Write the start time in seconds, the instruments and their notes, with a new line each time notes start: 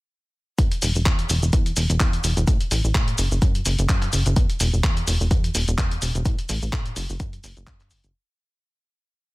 0.58 analog synth bass E2, kick, closed hi-hat, shaker
0.72 closed hi-hat, shaker
0.82 analog synth bass E1, open hi-hat, shaker
0.95 analog synth bass E1, shaker
1.06 analog synth bass E2, kick, clap, closed hi-hat, shaker
1.19 closed hi-hat, shaker
1.29 analog synth bass E1, open hi-hat, shaker
1.42 analog synth bass E1, shaker
1.53 analog synth bass E2, kick, closed hi-hat, shaker
1.66 closed hi-hat, shaker
1.76 analog synth bass E1, open hi-hat, shaker
1.90 analog synth bass E1, closed hi-hat, shaker
2.00 analog synth bass E2, kick, clap, closed hi-hat, shaker
2.13 closed hi-hat, shaker
2.24 analog synth bass E1, open hi-hat, shaker
2.37 analog synth bass E1, closed hi-hat, shaker
2.47 analog synth bass A2, kick, closed hi-hat, shaker
2.61 closed hi-hat, shaker
2.71 analog synth bass A1, open hi-hat, shaker
2.84 analog synth bass A1, shaker
2.95 analog synth bass A2, kick, clap, closed hi-hat, shaker
3.08 closed hi-hat, shaker
3.18 analog synth bass F#1, open hi-hat, shaker
3.31 analog synth bass F#1, shaker
3.42 analog synth bass F#2, kick, closed hi-hat, shaker
3.55 closed hi-hat, shaker
3.65 analog synth bass F#1, open hi-hat, shaker
3.79 analog synth bass F#1, closed hi-hat, shaker
3.89 analog synth bass F#2, kick, clap, closed hi-hat, shaker
4.02 clap, closed hi-hat, shaker
4.13 analog synth bass F#1, open hi-hat, shaker
4.26 analog synth bass F#1, closed hi-hat, shaker
4.36 analog synth bass E2, kick, closed hi-hat, shaker
4.50 closed hi-hat, shaker
4.60 analog synth bass E1, open hi-hat, shaker
4.73 analog synth bass E1, shaker
4.84 analog synth bass E2, kick, clap, closed hi-hat, shaker
4.97 closed hi-hat, shaker
5.07 analog synth bass E1, open hi-hat, shaker
5.21 analog synth bass E1, shaker
5.31 analog synth bass E2, kick, closed hi-hat, shaker
5.44 closed hi-hat, shaker
5.55 analog synth bass E1, open hi-hat, shaker
5.68 analog synth bass E1, closed hi-hat, shaker
5.78 analog synth bass E2, kick, clap, closed hi-hat, shaker
5.91 closed hi-hat, shaker
6.02 analog synth bass E1, open hi-hat, shaker
6.15 analog synth bass E1, closed hi-hat, shaker
6.25 analog synth bass A2, kick, closed hi-hat, shaker
6.39 closed hi-hat, shaker
6.49 analog synth bass A1, open hi-hat, shaker
6.62 analog synth bass A1, shaker
6.73 analog synth bass A2, kick, clap, closed hi-hat, shaker
6.86 closed hi-hat, shaker
6.96 analog synth bass F#1, open hi-hat, shaker
7.09 analog synth bass F#1, shaker
7.20 analog synth bass F#2, kick, closed hi-hat, shaker
7.33 closed hi-hat, shaker
7.44 analog synth bass F#1, open hi-hat, shaker
7.57 analog synth bass F#1, closed hi-hat, shaker
7.67 kick, clap, closed hi-hat, shaker
7.80 clap, closed hi-hat, shaker
7.91 analog synth bass F#1, open hi-hat, shaker
8.04 analog synth bass F#1, closed hi-hat, shaker